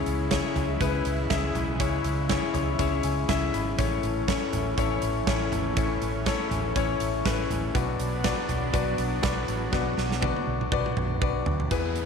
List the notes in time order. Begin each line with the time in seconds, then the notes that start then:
Already playing: C#3 G#3 C#4 E4 G#4 C#5
0.06 C#2, closed hi-hat
0.31 C#4 E4 G#4 C#5, kick, snare, closed hi-hat
0.56 C#2, closed hi-hat, floor tom
0.81 C#2 C#4 E4 G#4 B4, kick, closed hi-hat
1.05 C#2, closed hi-hat
1.30 C#2 C#4 E4 G#4 E5, kick, snare, closed hi-hat
1.55 B1, closed hi-hat, floor tom
1.80 C#2 C#3 C#4 E4 G#4 C#5, kick, closed hi-hat
2.04 C#2, closed hi-hat
2.29 C#4 E4 G#4 C#5, kick, snare, closed hi-hat
2.54 C#2 C#5, closed hi-hat, floor tom
2.79 C#2 C#4 E4 G#4 C#5 E5, kick, closed hi-hat
3.03 C#2 G#5, closed hi-hat
3.28 C#2 C#4 E4 G#4 E5 G#5, kick, snare, closed hi-hat
3.54 G#1 B5, closed hi-hat
3.78 A1 A2 E3 A3 C#4 E4 A4 C#5, kick, closed hi-hat
4.03 A1, closed hi-hat
4.28 C#4 E4 A4 C#5, kick, snare, closed hi-hat
4.53 A1, closed hi-hat, floor tom
4.77 A1 C#4 E4 A4 C#5, kick, closed hi-hat
5.02 A1, closed hi-hat
5.27 A1 C#4 E4 A4 C#5, kick, snare, closed hi-hat
5.52 G#1, closed hi-hat, floor tom
5.77 A1 A2 C#4 E4 A4 C#5, kick, closed hi-hat
6.01 A1, closed hi-hat
6.26 C#4 E4 A4 C#5, kick, snare, closed hi-hat
6.51 A1, closed hi-hat, floor tom
6.76 A1 C#4 E4 A4 C#5, kick, closed hi-hat
7.00 A1, closed hi-hat
7.25 A1 C#4 E4 A4 B4, kick, snare, closed hi-hat
7.50 A1, closed hi-hat, floor tom
7.74 B1 B2 F#3 B3 D4 F#4 B4 D5, kick, closed hi-hat
8.00 B1, closed hi-hat
8.24 D4 F#4 B4 D5, kick, snare, closed hi-hat
8.49 B1, closed hi-hat, floor tom
8.73 B1 D4 F#4 B4 D5, kick, closed hi-hat
8.98 B1, closed hi-hat
9.22 B1 D4 F#4 B4 D5, kick, snare, closed hi-hat
9.48 A1, closed hi-hat
9.72 B1 B2 D4 F#4 B4 D5, kick, snare
9.98 B1, snare
10.12 snare
10.21 D4 F#4 B4 D5, kick, high tom
10.36 high tom
10.47 B1
10.61 mid tom
10.72 B1 D4 F#4 B4 D5, kick
10.86 mid tom
10.97 B1, mid tom
11.21 B1 D4 F#4 B4 D5, kick
11.46 D2, floor tom
11.60 floor tom
11.71 E2 E3 B3 E4 G#4 B4, kick, closed hi-hat, downlifter
11.96 closed hi-hat